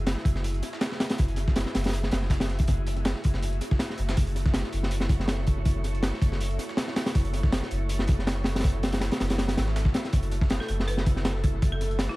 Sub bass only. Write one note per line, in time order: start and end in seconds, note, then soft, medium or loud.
0.00 0.15 F#1 loud
0.25 0.61 F#1 loud
1.19 1.65 F#1 loud
1.75 2.10 F#1 medium
2.12 2.66 F#1 medium
2.68 3.14 F#1 loud
3.25 3.60 F#1 medium
3.98 4.15 F#1 loud
4.17 4.63 F#1 loud
4.73 5.09 F#1 medium
5.09 5.64 F#1 medium
5.66 6.11 F#1 loud
6.21 6.58 F#1 medium
7.15 7.61 F#1 loud
7.71 8.07 F#1 medium
8.09 8.63 F#1 medium
8.64 9.10 F#1 loud
9.20 9.56 F#1 medium
9.57 9.93 G#1 medium
10.13 10.59 F#1 loud
10.69 11.05 F#1 medium
11.06 11.61 F#1 medium
11.62 12.08 F#1 loud